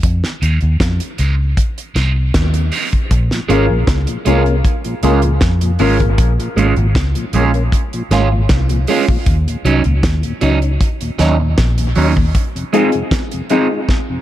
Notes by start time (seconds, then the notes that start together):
0.03 F2, kick, closed hi-hat
0.24 snare, closed hi-hat
0.41 D#2 G#3 D#4 F4 G#4 C5, closed hi-hat
0.61 D#2, closed hi-hat
0.80 F2, kick, snare, closed hi-hat
1.00 closed hi-hat
1.18 C#2 G#3 D#4 F4 G#4 C5, closed hi-hat
1.40 G#4 C5
1.57 kick, closed hi-hat
1.78 closed hi-hat
1.95 C2 G#3 D#4 F4 G#4 C5, snare, closed hi-hat
2.16 G#4 C5, muted clean electric guitar stroke
2.34 D#2, kick, snare, closed hi-hat
2.54 closed hi-hat
2.72 G#3 D#4 F4 G#4 C5, open hi-hat
2.92 muted clean electric guitar stroke, kick, closed hi-hat
3.11 A#1, kick, closed hi-hat
3.31 A#2 F3, snare, closed hi-hat
3.48 G#1 G#3 A#3 C#4 F4 G#4 A#4, closed hi-hat
3.69 A#1 A#2 F3
3.87 C#2, kick, snare, closed hi-hat
4.07 A#2 F3, closed hi-hat
4.25 C2 G#3 A#3 C#4 F4 G#4 A#4, closed hi-hat
4.46 A#3 C#4 G#4 A#4, closed hi-hat
4.65 kick, closed hi-hat
4.85 A#2 F3, closed hi-hat
5.02 C#2 G#3 A#3 C#4 F4 G#4 A#4, closed hi-hat
5.22 A#2 F3, closed hi-hat
5.41 F2, kick, snare, closed hi-hat
5.61 A#2 F3, closed hi-hat
5.79 G#1 G#3 A#3 C#4 F4 G#4 A#4, open hi-hat
6.00 A#2 F3, muted clean electric guitar stroke, kick, closed hi-hat
6.18 A#1, kick, closed hi-hat
6.39 A#2 F3, closed hi-hat
6.56 G#1 G#3 A#3 C#4 F4, closed hi-hat
6.76 G#1 A#2 F3, closed hi-hat
6.95 C#2, kick, snare, closed hi-hat
7.15 A#2 F3, closed hi-hat
7.33 A#1 G#3 A#3 C#4 F4, closed hi-hat
7.54 A#3 C#4, closed hi-hat
7.72 kick, closed hi-hat
7.93 A#2 F3, closed hi-hat
8.11 G#1 G#3 A#3 C#4 F4, snare, closed hi-hat
8.32 A#2 F3, muted clean electric guitar stroke
8.49 C2, kick, snare, closed hi-hat
8.69 A#2 F3, closed hi-hat
8.87 G#3 A#3 C#4 F4, open hi-hat
9.08 A#2 F3, kick
9.26 D#2, kick, closed hi-hat
9.47 D#2 A#2, closed hi-hat
9.65 C2 F#3 C#4 D#4, closed hi-hat
9.84 C#2 D#2 A#2, closed hi-hat
10.03 D#2, kick, snare, closed hi-hat
10.23 D#2 A#2, closed hi-hat
10.41 C#2 F#3 C#4 D#4, closed hi-hat
10.62 C#4 D#4, closed hi-hat
10.81 kick, closed hi-hat
11.01 D#2 A#2, closed hi-hat
11.19 D#2 F#3 C#4 D#4, snare, closed hi-hat
11.41 D#2 A#2, muted clean electric guitar stroke
11.58 A#1, kick, snare, closed hi-hat
11.78 D#2 A#2, closed hi-hat
11.95 D#2 F#3 C#4 D#4, open hi-hat
12.17 D#2 A#2, muted clean electric guitar stroke, kick
12.35 kick, closed hi-hat
12.55 F2 C3, closed hi-hat
12.73 F3 G#3 C4 D#4 F4 G#4, closed hi-hat
12.92 F2 C3, closed hi-hat
13.11 kick, snare, closed hi-hat
13.31 F2 C3, closed hi-hat
13.49 F3 G#3 C4 D#4 F4 G#4, closed hi-hat
13.71 G#3 D#4 F4 G#4
13.89 kick, snare
14.10 F2 C3